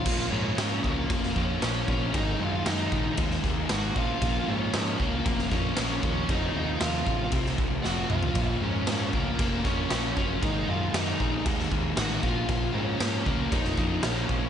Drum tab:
CC |x---x---x---x---|x---x---x---x---|x---x---x---x---|x---x---x-------|
SD |----o----o--o---|----o----oo-o---|----o----oo-o---|----o----o--o---|
T2 |----------------|----------------|----------------|--------------o-|
FT |----------------|----------------|----------------|---------------o|
BD |o-----o-o-o---o-|o-----o-o-o---o-|o-----o-o-o---o-|o-----o-o-o-----|

CC |x---x---x---x---|x---x---x---x---|x---x---x---x---|
SD |----o-----o-o---|----o----o--o---|----o----oo-o---|
T2 |----------------|----------------|----------------|
FT |----------------|----------------|----------------|
BD |o-----o-o-o---o-|o-----o-o-o---o-|o-----o-o-o---o-|